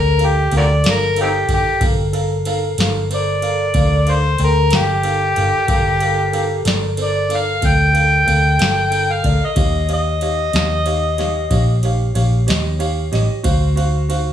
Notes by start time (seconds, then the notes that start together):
Already playing: D2 A4 A#4 G5
0.18 A4 A#4 F5, ride
0.25 G4
0.51 D2 A4 A#4 F5, ride
0.57 F#4 A#4 D5
0.84 G1 A4 A#4 F5, snare, ride
0.90 A#4
1.16 A4 A#4 F5, ride
1.21 C4 D#4 G4
1.48 G1 A4 A#4 G5, kick, ride
1.54 G4
1.81 G1 A4 A#4 F5, kick, ride
2.13 A4 A#4 F5, ride
2.45 A4 A#4 F5, ride
2.78 G1 A4 A#4 F5, snare, ride
3.10 A4 A#4 C5, ride
3.15 D5
3.42 A4 A#4 F5, ride
3.74 D2 A4 A#4 F5, kick, ride
4.06 A4 A#4 F5, ride
4.12 C5
4.38 D2 A4 A#4 G5, ride
4.44 A#4
4.71 G1 A4 A#4 F5, snare, ride
4.76 G4
5.03 A4 A#4 F5, ride
5.36 G1 A4 A#4 F5, ride
5.68 G1 A4 A#4 F5, kick, ride
6.00 A4 A#4 F5, ride
6.33 A4 A#4 F5, ride
6.65 G1 A4 A#4 D5, snare, ride
6.97 A4 A#4 C5, ride
7.03 D5
7.29 A4 A#4 F5, ride
7.36 F5
7.62 D2 A4 A#4 F5, kick, ride
7.68 G5
7.93 A4 A#4 F5, ride
8.26 D2 A4 A#4 F5, ride
8.59 G1 A4 A#4 F5, snare, ride
8.90 A4 A#4 G5, ride
9.12 F5
9.23 D2 A4 A#4 D5, kick, ride
9.45 D#5
9.56 D#2 G4 C#5 F5, kick, ride
9.89 G4 C#5 F5, ride
9.93 D#5
10.21 G4 C#5 F5, ride
10.53 D#2 G4 C#5 F5, snare, ride
10.86 G4 C#5 F5, ride
11.18 G4 C#5 F5, snare, ride
11.51 A#1 G4 C#5 F5, kick, ride
11.83 G4 C#5 F5, ride
12.15 A#1 G4 C#5 F5, ride
12.47 D#2 G4 C#5 D#5, snare, ride
12.79 G4 C#5 F5, ride
13.12 A1 G4 C#5 D#5, snare, ride
13.43 D2 F#4 C5 F5, kick, ride
13.76 F#4 C5 F5, ride
14.09 F#4 C5 F5, ride